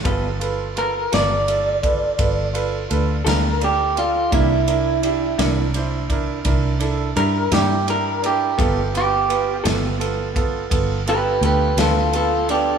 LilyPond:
<<
  \new Staff \with { instrumentName = "Clean electric guitar" } { \time 12/8 \key g \mixolydian \tempo 4. = 56 r4 bes'8 d''2. bes'8 g'8 f'8 | e'2 r2 bes'8 g'8 bes'8 g'8~ | g'8 g'4 r2 <g' b'>8 <g' b'>8 <f' a'>8 <f' a'>8 <d' g'>8 | }
  \new Staff \with { instrumentName = "Upright piano" } { \time 12/8 \key g \mixolydian <f' a' b'>8 <f' a' b'>8 <f' a' b'>8 <f' a' d''>8 <f' a' d''>8 <f' a' b'>8 <f' a' b'>8 <f' a' b'>8 <f' a' b'>8 <f' a' b'>8 <f' a' d''>8 <f' a' d''>8 | <d' e' bes'>8 <d' e' bes'>8 <d' e' g'>8 <d' e' bes'>8 <d' e' c''>8 <d' e' bes'>8 <d' e' bes'>8 <d' e' a'>8 <d' e' g'>8 <d' e' g'>8 <d' e' g'>8 <d' e' bes'>8 | <b f' a'>8 <b f' b'>8 <b f' b'>8 <b f' a'>8 <b f' a'>8 <b f' a'>8 <b f' a'>8 <b f' a'>8 <b f' a'>8 <b f' b'>8 <b f' b'>8 <b f' a'>8 | }
  \new Staff \with { instrumentName = "Clean electric guitar" } { \time 12/8 \key g \mixolydian <g b f' a'>8 r4 <g b f' a'>8 r2 r8 <g b f' a'>8 r4 | <c bes d' e'>8 r4 <c bes d' e'>8 r2 r8 <c bes d' e'>8 r4 | <g b f' a'>8 r4 <g b f' a'>8 r2 r8 <g b f' a'>8 r4 | }
  \new Staff \with { instrumentName = "Fingered electric bass" } { \clef bass \time 12/8 \key g \mixolydian g,,4. g,,4. g,,4 d,8 d,4. | c,4. c,4. c,4 g,8 g,4. | g,,4. g,,4. g,,4 d,8 d,4. | }
  \new DrumStaff \with { instrumentName = "Drums" } \drummode { \time 12/8 <bd cymr>8 cymr8 cymr8 <cymr sn>8 cymr8 <bd cymr>8 <bd cymr>8 cymr8 cymr8 <cymr sn>8 cymr8 cymr8 | <bd cymr>8 cymr8 cymr8 <cymr sn>8 cymr8 <bd cymr>8 <bd cymr>8 cymr8 cymr8 <cymr sn>8 cymr8 cymr8 | <bd cymr>8 cymr8 cymr8 <cymr sn>8 cymr8 <bd cymr>8 <bd cymr>8 cymr8 cymr8 <cymr sn>8 cymr8 cymr8 | }
>>